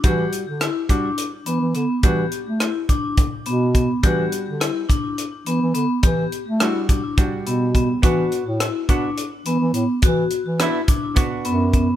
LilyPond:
<<
  \new Staff \with { instrumentName = "Hollow-body jazz guitar" } { \time 7/8 \key e \minor \tempo 4 = 105 <g d' fis'>8 r4 <g d' fis'>8 r4. | <g d' fis'>8 r2. | <g d' fis'>4. r2 | r4 <g d' fis'>8 r8 <g d' fis'>4. |
<b d' fis'>8 r4 <b d' fis'>8 r4. | r4 <b d' e'>8 r8 <b d' fis'>4. | }
  \new Staff \with { instrumentName = "Vibraphone" } { \time 7/8 \key e \minor g'4 e'8 d'4 b8 b8 | g'4 e'8 d'4 b8 b8 | g'4 e'8 d'4 b8 b8 | g'4 e'8 d'4 b8 b8 |
fis'4 e'8 d'4 b8 b8 | fis'4 e'8 d'4 b8 b8 | }
  \new Staff \with { instrumentName = "Bass clarinet" } { \clef bass \time 7/8 \key e \minor e8 r16 d8 r4 r16 e16 e16 d16 r16 | e8 r16 a8 r4 r16 b,4 | e8 r16 d8 r4 r16 e16 e16 d16 r16 | e8 r16 a8 r4 r16 b,4 |
e8 r16 a,8 r4 r16 e16 e16 a,16 r16 | e8 r16 e8 r4 r16 fis,4 | }
  \new DrumStaff \with { instrumentName = "Drums" } \drummode { \time 7/8 <hh bd>8 hh8 <hh ss>8 <hh bd>8 hh8 hh8 hh8 | <hh bd>8 hh8 <hh ss>8 <hh bd>8 <hh bd>8 hh8 <hh bd>8 | <hh bd>8 hh8 <hh ss>8 <hh bd>8 hh8 hh8 hh8 | <hh bd>8 hh8 <hh ss>8 <hh bd>8 <hh bd>8 hh8 <hh bd>8 |
<hh bd>8 hh8 <hh ss>8 <hh bd>8 hh8 hh8 hh8 | <hh bd>8 hh8 <hh ss>8 <hh bd>8 <hh bd>8 hh8 <hh bd>8 | }
>>